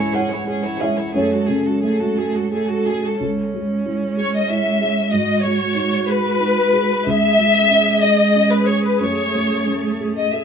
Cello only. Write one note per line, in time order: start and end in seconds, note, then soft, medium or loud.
0.00 0.17 E3 medium
0.15 0.33 G#3 medium
0.31 0.47 E3 medium
0.48 0.67 G#3 medium
0.65 0.83 E3 medium
0.81 0.99 G#3 medium
0.98 1.15 E3 medium
1.16 1.34 A3 medium
1.32 1.51 G#3 medium
1.49 1.67 A3 medium
1.66 1.83 G#3 medium
1.84 2.02 A3 medium
2.01 2.19 G#3 medium
2.18 2.36 A3 medium
2.34 2.51 G#3 medium
2.51 2.70 A3 medium
2.69 2.88 G#3 medium
2.86 3.06 A3 medium
3.04 3.21 G#3 medium
3.21 7.04 G#3 medium
7.08 9.04 G#3 medium
9.03 10.44 A3 medium